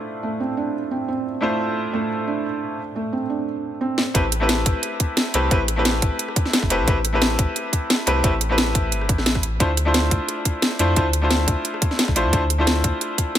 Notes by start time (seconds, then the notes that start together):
Already playing: A3 D4 E4 F4 C5
0.23 A3
0.40 C4
0.57 D4
0.91 C4
1.08 C4
1.41 A3 D4 E4 F4 C5
1.93 A3
2.27 D4
2.96 A3
3.13 C4
3.30 D4
3.81 C4
3.98 snare
4.14 A1 A3 C4 E4 G4 B4, kick, closed hi-hat
4.32 cross-stick, closed hi-hat
4.40 A3 C4 E4 G4 B4
4.49 snare, closed hi-hat
4.66 A1, kick, closed hi-hat
4.83 cross-stick, closed hi-hat
5.00 kick, closed hi-hat
5.17 snare, closed hi-hat
5.34 C2 A3 C4 E4 G4 B4, closed hi-hat
5.43 cross-stick
5.51 A1 A3 C4 E4 G4 B4, kick, closed hi-hat
5.68 cross-stick, closed hi-hat
5.76 A3 C4 E4 G4 B4
5.85 snare, closed hi-hat
6.02 A1, kick, closed hi-hat
6.19 closed hi-hat
6.28 cross-stick
6.36 kick, closed hi-hat
6.46 snare
6.53 snare, closed hi-hat
6.63 G1, kick, cross-stick
6.70 E1 A3 C4 E4 G4 B4, closed hi-hat
6.80 C2
6.87 A1 A3 C4 E4 G4 B4, kick, closed hi-hat
7.05 cross-stick, closed hi-hat
7.13 A3 C4 E4 G4 B4
7.22 snare, closed hi-hat
7.39 A1, kick, closed hi-hat
7.56 cross-stick, closed hi-hat
7.73 kick, closed hi-hat
7.90 snare, closed hi-hat
8.06 C2 A3 C4 E4 G4 B4, closed hi-hat
8.16 cross-stick
8.24 A1 A3 C4 E4 G4 B4, kick, closed hi-hat
8.41 cross-stick, closed hi-hat
8.49 A3 C4 E4 G4 B4
8.58 snare, closed hi-hat
8.75 A1, kick, closed hi-hat
8.92 G1, closed hi-hat
9.01 cross-stick
9.09 A1, kick, closed hi-hat
9.18 cross-stick, snare
9.26 snare, closed hi-hat
9.35 kick, cross-stick
9.43 closed hi-hat
9.60 D2 A3 D4 E4 F4 C5, kick, closed hi-hat
9.77 cross-stick, closed hi-hat
9.85 A3 D4 E4 F4 C5
9.94 snare, closed hi-hat
10.11 D2, kick, closed hi-hat
10.29 cross-stick, closed hi-hat
10.45 kick, closed hi-hat
10.62 snare, closed hi-hat
10.79 F2 A3 D4 E4 F4 C5, closed hi-hat
10.89 cross-stick
10.96 D2 A3 D4 E4 F4 C5, kick, closed hi-hat
11.13 cross-stick, closed hi-hat
11.22 A3 D4 E4 F4 C5
11.31 snare, closed hi-hat
11.48 D2, kick, closed hi-hat
11.65 closed hi-hat
11.74 cross-stick
11.82 kick, closed hi-hat
11.91 snare
11.99 snare, closed hi-hat
12.08 C2, kick, cross-stick
12.15 A1 A3 D4 E4 F4 C5, closed hi-hat
12.25 F2
12.32 D2 A3 D4 E4 F4 C5, kick, closed hi-hat
12.50 cross-stick, closed hi-hat
12.58 A3 D4 E4 F4 C5
12.67 snare, closed hi-hat
12.84 D2, kick, closed hi-hat
13.01 cross-stick, closed hi-hat
13.18 kick, closed hi-hat
13.35 snare, closed hi-hat